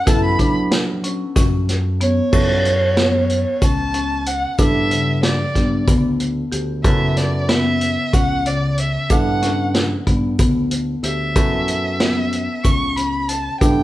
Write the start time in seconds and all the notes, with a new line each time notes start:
0.06 F#2 B3 E4 A4 A5, kick, closed hi-hat, shaker
0.25 B5
0.39 F#3 D4, kick, closed hi-hat, shaker
0.72 snare, closed hi-hat
1.04 C#4, closed hi-hat
1.36 F#2 C#4, kick, snare, closed hi-hat, shaker
1.69 snare, closed hi-hat, shaker
2.01 B3 C#5, closed hi-hat
2.32 F#2 B3 C#4 E4 A4, kick, crash, shaker
2.65 closed hi-hat
2.97 B3, snare, closed hi-hat
3.30 closed hi-hat
3.62 C#2 C#4 A5, kick, closed hi-hat, shaker
3.94 C#4, closed hi-hat
4.26 F#5, closed hi-hat
4.58 G2 B3 D4 E4 A4 E5, kick, closed hi-hat, shaker
4.90 C#3, closed hi-hat
5.23 D5, snare, closed hi-hat
5.55 G2 B3, kick, snare, closed hi-hat
5.87 D2 B3, kick, closed hi-hat, shaker
6.20 closed hi-hat
6.52 D2 G4, closed hi-hat
6.84 F#2 C#3 B3 E4 A4 E5, kick, closed hi-hat, shaker
7.17 D5, snare, closed hi-hat
7.49 B3 E5, snare, closed hi-hat
7.81 closed hi-hat
8.13 C#2 C#4 F#5, kick, closed hi-hat, shaker
8.46 C#3 D5, closed hi-hat
8.78 E5, closed hi-hat
9.10 G2 B3 D4 E4 A4 F#5, kick, closed hi-hat, shaker
9.42 C#4, snare, closed hi-hat, shaker
9.75 snare, closed hi-hat, shaker
10.07 G2 B3, kick, closed hi-hat, shaker
10.39 D2 B3, kick, closed hi-hat, shaker
10.71 closed hi-hat
11.03 D2 G4 E5, closed hi-hat
11.36 F#2 B3 C#4 E4 A4, kick, closed hi-hat, shaker
11.68 closed hi-hat
12.00 B3, snare, closed hi-hat
12.33 closed hi-hat
12.64 C#2 C#4 C#6, kick, closed hi-hat, shaker
12.96 C#4 B5, closed hi-hat
13.28 A5, closed hi-hat
13.60 G2 B3 D4 E4 A4 G5, kick, closed hi-hat, shaker